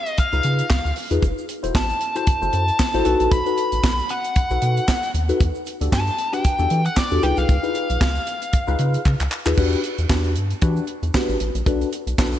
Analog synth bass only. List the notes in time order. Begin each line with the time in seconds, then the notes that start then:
0.33 C#2
0.45 C#3
0.70 C#2
0.85 D2
1.11 E2
1.23 F#1
1.64 E1
1.75 A1
2.42 F#1
2.53 F#2
2.94 A1
3.06 B1
3.20 A#1
3.32 B1
3.72 A1
3.84 B1
4.51 B1
4.62 B2
5.14 D#2
5.40 E2
5.81 D2
5.92 G2
6.59 E2
6.71 E3
7.12 E2
7.23 C#2
7.38 C2
7.49 C#2
7.90 B1
8.01 C#2
8.68 C#2
8.79 C#3
9.05 C#3
9.20 C#2
9.46 D#2
9.58 E2
9.98 E2
10.10 E2
10.36 G2
10.62 E3
11.03 E2
11.29 A1
11.40 A1
11.55 A#1
11.66 B1
12.07 B1
12.18 B1